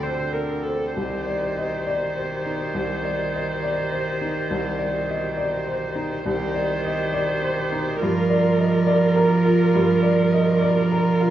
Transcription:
Already playing: upright piano D2 D4 A4 F#5, cello D3, harmonium C4 A4 D5
0.03 upright piano C5, viola C5
0.33 upright piano D4, viola A#4
0.63 viola A4, upright piano C5
0.94 upright piano C2, cello D#3, harmonium D#4 G4 D5, viola C5
1.26 upright piano D5
1.56 upright piano D#5
1.87 upright piano D5
2.17 upright piano C5
2.46 upright piano D#4
2.74 upright piano C2
3.04 upright piano D5
3.33 upright piano D#5
3.63 upright piano D5
3.92 upright piano C5
4.21 upright piano D#4
4.51 upright piano C2
4.79 upright piano D5
5.08 upright piano D#5
5.37 upright piano D5
5.66 upright piano C5
5.95 upright piano D#4
6.25 upright piano C2, cello D#3, harmonium D#4 G4 D5, viola C5
6.54 upright piano D5
6.85 upright piano D#5
7.13 upright piano D5
7.42 upright piano C5
7.72 upright piano D#4
7.98 upright piano G2, cello F3, harmonium F4 A#4, viola A#4
8.30 upright piano D5
8.58 upright piano D#5
8.87 upright piano D5
9.16 upright piano A#4
9.45 upright piano F4
9.75 upright piano G2
10.02 upright piano D5
10.32 upright piano D#5
10.61 upright piano D5
10.92 upright piano A#4
11.21 upright piano F4

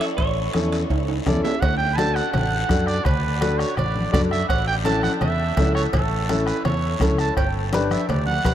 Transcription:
0.01 high timbale, short guiro
0.17 fingered electric bass A1, clean electric guitar C#5, bombo low, high conga, high timbale, long guiro
0.53 fingered electric bass E2, upright piano C#4 E4 A4, bombo rim, high conga, high timbale, short guiro
0.72 high timbale, short guiro
0.90 fingered electric bass C#2, bombo low, high conga, high timbale, long guiro
1.01 clean electric guitar B4
1.08 high timbale
1.26 fingered electric bass E2, upright piano C#4 E4 A4, trumpet D5, bombo low, bombo rim, high conga, low conga, low timbale, short guiro
1.44 trumpet E5, low timbale, short guiro
1.61 fingered electric bass D2, trumpet F#5, bombo low, bombo rim, cowbell, long guiro
1.78 trumpet G5, high conga
1.94 trumpet A5 B5
1.98 upright piano D4 F#4 A4, bombo rim, cowbell, high conga, short guiro
2.15 trumpet F#5, bombo rim, short guiro
2.33 fingered electric bass A1, trumpet F#5, bombo rim, cowbell, high conga, low conga, long guiro
2.69 fingered electric bass F#2, upright piano D4 F#4 A4, bombo low, bombo rim, cowbell, high conga, short guiro
2.87 trumpet D5, bombo rim, short guiro
3.04 fingered electric bass D2, trumpet B4, bombo low, bombo rim, cowbell, low conga, long guiro
3.24 high conga
3.41 upright piano D4 F#4 A4, bombo rim, cowbell, high conga, short guiro
3.58 trumpet C#5, bombo rim, short guiro
3.76 fingered electric bass A1, trumpet D5, bombo rim, cowbell, high conga, low conga, long guiro
3.96 high conga
4.12 fingered electric bass F#2, upright piano D4 F#4 A4, trumpet D5, bombo low, bombo rim, cowbell, high conga, low conga, low timbale, short guiro
4.31 trumpet E5, bombo rim, short guiro
4.49 fingered electric bass A1, trumpet F#5, bombo low, bombo rim, cowbell, long guiro
4.67 trumpet G5, high conga
4.85 upright piano C#4 E4 A4, trumpet A5, bombo rim, cowbell, high conga, short guiro
5.03 trumpet F#5, bombo rim, high conga, short guiro
5.21 fingered electric bass E2, trumpet E5, bombo rim, cowbell, high conga, low conga, long guiro
5.57 fingered electric bass C#2, upright piano C#4 E4 A4, bombo low, bombo rim, cowbell, high conga, low timbale, short guiro
5.75 trumpet C#5, bombo rim, short guiro
5.93 fingered electric bass A1, trumpet A4, bombo low, bombo rim, cowbell, low conga, long guiro
6.12 high conga
6.29 upright piano C#4 E4 A4, bombo rim, cowbell, high conga, short guiro
6.46 trumpet B4, bombo rim, short guiro
6.65 fingered electric bass E2, trumpet C#5, bombo rim, cowbell, high conga, low conga, long guiro
7.00 fingered electric bass C#2, upright piano C#4 E4 A4, bombo low, bombo rim, cowbell, high conga, low conga, short guiro
7.18 trumpet A5, bombo rim, short guiro
7.37 fingered electric bass G1, trumpet G5, bombo low, bombo rim, cowbell, long guiro
7.55 high conga
7.73 upright piano D4 G4 B4, bombo rim, cowbell, high conga, short guiro
7.91 trumpet E5, bombo rim, high conga, short guiro
8.09 fingered electric bass D2, trumpet D5, bombo rim, cowbell, high conga, low conga, long guiro
8.27 trumpet F#5, high conga
8.45 fingered electric bass B1, upright piano D4 G4 B4, bombo low, bombo rim, cowbell, high conga, short guiro

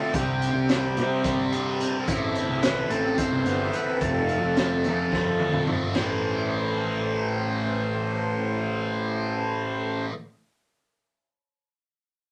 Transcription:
Already playing: distorted electric guitar D3 A3 C4, french horn section D3 A3 C4 F4 A4, transistor combo organ A4
0.14 fingered electric bass C2, distorted electric guitar C3, french horn section G3 G4 C5, transistor combo organ G4, kick, closed hi-hat
0.42 closed hi-hat
0.55 fingered electric bass C2
0.69 distorted electric guitar G3, snare, closed hi-hat
0.97 fingered electric bass C3, distorted electric guitar C4, closed hi-hat
1.24 distorted electric guitar G3, kick, closed hi-hat
1.52 distorted electric guitar D4, closed hi-hat
1.80 distorted electric guitar C4, closed hi-hat
2.07 fingered electric bass A1, distorted electric guitar A2, french horn section C3 A3 E4 A4, transistor combo organ E4, kick, closed hi-hat
2.35 closed hi-hat
2.49 fingered electric bass C2
2.63 distorted electric guitar E3, transistor combo organ B4, snare, closed hi-hat
2.90 fingered electric bass A1, distorted electric guitar C4, transistor combo organ A4, closed hi-hat
3.18 distorted electric guitar E3, transistor combo organ C5, kick, closed hi-hat
3.32 fingered electric bass C2
3.46 fingered electric bass G1, distorted electric guitar B3, closed hi-hat
3.73 distorted electric guitar C4, transistor combo organ B4, closed hi-hat
4.00 fingered electric bass F1, distorted electric guitar F2, french horn section F3 F4 A4, transistor combo organ A4, kick, closed hi-hat
4.29 closed hi-hat
4.43 fingered electric bass F1
4.57 distorted electric guitar F3, snare, closed hi-hat
4.84 fingered electric bass F2, distorted electric guitar A3, closed hi-hat
5.12 distorted electric guitar F3, kick, snare
5.40 distorted electric guitar C4, high tom
5.53 mid tom
5.67 distorted electric guitar A3, mid tom
5.94 fingered electric bass A1, distorted electric guitar A2 E3, french horn section C3 E3 A3 C4 A4, transistor combo organ C5, snare, crash
5.99 distorted electric guitar A3

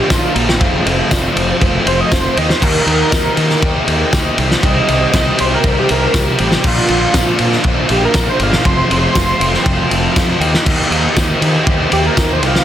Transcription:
0.08 fingered electric bass A#1, overdriven electric guitar A#2 D3 A#3 D4 F4, analog synth lead F4, kick, snare, ride, tambourine
0.34 fingered electric bass A#1, overdriven electric guitar A#2 D3 A#3 D4 F4, synth bell A#5, ride
0.48 synth bell G5, snare
0.59 fingered electric bass F1, overdriven electric guitar F2 C3 F3 A3 C4 F4, synth bell F5, kick, ride
0.85 fingered electric bass F1, overdriven electric guitar F2 C3 F3 A3 C4 F4, synth bell D#5, ride
1.10 fingered electric bass F1, overdriven electric guitar F2 C3 F3 A3 C4 F4, synth bell D5, kick, snare, ride, tambourine
1.35 fingered electric bass F1, overdriven electric guitar F2 C3 F3 A3 C4 F4, synth bell C5, ride
1.60 fingered electric bass F1, overdriven electric guitar F2 C3 F3 A3 C4 F4, kick, ride
1.85 fingered electric bass F1, overdriven electric guitar F2 C3 F3 A3 C4 F4, analog synth lead C5, ride
2.01 analog synth lead D#5
2.10 fingered electric bass F1, overdriven electric guitar F2 C3 F3 A3 C4 F4, analog synth lead C5, kick, snare, ride, tambourine
2.26 analog synth lead C5
2.36 fingered electric bass D#2, overdriven electric guitar D#3 A#3 D#4 G4, analog synth lead D#5, ride
2.50 analog synth lead C5, snare
2.62 fingered electric bass D#2, overdriven electric guitar D#3 A#3 D#4 G4, analog synth lead A#4, kick, crash
2.86 fingered electric bass D#2, overdriven electric guitar D#3 A#3 D#4 G4, ride
3.11 fingered electric bass D#2, overdriven electric guitar D#3 A#3 D#4 G4, synth bell D#5, kick, snare, ride, tambourine
3.36 overdriven electric guitar D#3 A#3 D#4 G4, fingered electric bass D#3, ride
3.50 snare
3.61 fingered electric bass D#2, overdriven electric guitar D#3 A#3 D#4 G4, synth bell G5, kick, ride
3.86 fingered electric bass D#2, overdriven electric guitar D#3 A#3 D#4 G4, ride
4.11 fingered electric bass D2, overdriven electric guitar D#3 A#3 D#4 G4, synth bell D#5, kick, snare, ride, tambourine
4.37 fingered electric bass C2, overdriven electric guitar C3 D#3 G3 C4 G4, ride
4.51 snare
4.62 fingered electric bass C2, overdriven electric guitar C3 D#3 G3 C4 G4, analog synth lead D#5, kick, ride
4.87 fingered electric bass C2, overdriven electric guitar C3 D#3 G3 C4 G4, ride
5.12 fingered electric bass C2, overdriven electric guitar C3 D#3 G3 C4 G4, kick, snare, ride, tambourine
5.37 fingered electric bass C2, overdriven electric guitar C3 D#3 G3 C4 G4, analog synth lead C5, ride
5.54 analog synth lead A#4
5.63 fingered electric bass C2, overdriven electric guitar C3 D#3 G3 C4 G4, kick, ride
5.79 analog synth lead G4
5.88 fingered electric bass C2, overdriven electric guitar C3 D#3 G3 C4 G4, analog synth lead A#4, ride
6.13 fingered electric bass C2, overdriven electric guitar C3 D#3 G3 C4 G4, kick, snare, ride, tambourine
6.37 fingered electric bass A1, overdriven electric guitar C3 D#3 G3 C4 G4, analog synth lead G4, ride
6.52 snare
6.62 fingered electric bass A#1, overdriven electric guitar A#2 D3 A#3 D4 F4, kick, crash
6.67 analog synth lead F4
6.88 fingered electric bass A#1, overdriven electric guitar A#2 D3 A#3 D4 F4, ride
7.13 fingered electric bass A#1, overdriven electric guitar A#2 D3 A#3 D4 F4, kick, snare, ride, tambourine
7.38 overdriven electric guitar A#2 D3 A#3 D4 F4, fingered electric bass A#2, ride
7.53 snare
7.64 fingered electric bass A#1, overdriven electric guitar A#2 D3 A#3 D4 F4, kick, ride
7.88 fingered electric bass A#1, overdriven electric guitar A#2 D3 A#3 D4 F4, analog synth lead G4, ride
8.05 analog synth lead A#4
8.13 fingered electric bass A#1, overdriven electric guitar A#2 D3 A#3 D4 F4, kick, snare, ride, tambourine
8.29 analog synth lead C5
8.38 fingered electric bass G1, overdriven electric guitar A#2 D3 A#3 D4 F4, ride
8.43 analog synth lead F5
8.53 snare
8.64 fingered electric bass F1, overdriven electric guitar F2 C3 F3 A3 C4 F4, analog synth lead C6, kick, ride
8.89 fingered electric bass F1, overdriven electric guitar F2 C3 F3 A3 C4 F4, analog synth lead C6, ride
9.14 fingered electric bass F1, overdriven electric guitar F2 C3 F3 A3 C4 F4, kick, snare, ride, tambourine
9.38 fingered electric bass F1, overdriven electric guitar F2 C3 F3 A3 C4 F4, synth bell F5, ride
9.54 snare
9.63 fingered electric bass F1, overdriven electric guitar F2 C3 F3 A3 C4 F4, synth bell G5, kick, ride
9.89 fingered electric bass F1, overdriven electric guitar F2 C3 F3 A3 C4 F4, synth bell A5, ride
10.14 overdriven electric guitar F2 C3 F3 A3 C4 F4, fingered electric bass F2, synth bell F5, kick, snare, ride, tambourine
10.40 fingered electric bass D#2, overdriven electric guitar D#3 A#3 D#4 G4, synth bell G5, ride
10.54 snare
10.65 fingered electric bass D#2, overdriven electric guitar D#3 A#3 D#4 G4, synth bell D#5, kick, crash
10.90 fingered electric bass D#2, overdriven electric guitar D#3 A#3 D#4 G4, ride
11.16 fingered electric bass D#2, overdriven electric guitar D#3 A#3 D#4 G4, kick, snare, ride, tambourine
11.41 overdriven electric guitar D#3 A#3 D#4 G4, fingered electric bass D#3, ride
11.66 fingered electric bass D#2, overdriven electric guitar D#3 A#3 D#4 G4, kick, ride
11.90 fingered electric bass D#2, overdriven electric guitar D#3 A#3 D#4 G4, analog synth lead G4, ride
12.07 analog synth lead A#4
12.16 fingered electric bass D#2, overdriven electric guitar D#3 A#3 D#4 G4, kick, snare, ride, tambourine
12.33 analog synth lead C5
12.41 fingered electric bass C2, overdriven electric guitar C3 D#3 G3 D#4 G4, analog synth lead F5, ride
12.55 snare

